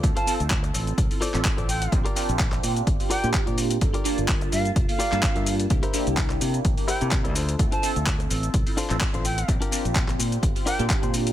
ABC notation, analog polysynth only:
X:1
M:4/4
L:1/16
Q:"Swing 16ths" 1/4=127
K:Dm
V:1 name="Analog polysynth"
[CEFA] z [CFA]6- [CFA] [CEFA] z [CFAe]4- [CFAe] | [CDFG] z [CDFG]6- [CDFG] [CDFG] z [CDFG]4- [CDFG] | [B,DFA] z [B,DFa]6- [B,DFa] [B,DFA] z [B,DFa]4- [B,DFa] | [B,DEG] z [B,DEG]6- [B,DEG] [B,DEG] z [B,DEG]3 z2 |
[CEFA] z [CFAe]6- [CFAe] [CEFA] z [CFAe]4- [CFAe] | [CDFG] z [CDFG]6- [CDFG] [CDFG] z [CDFG]4- [CDFG] |]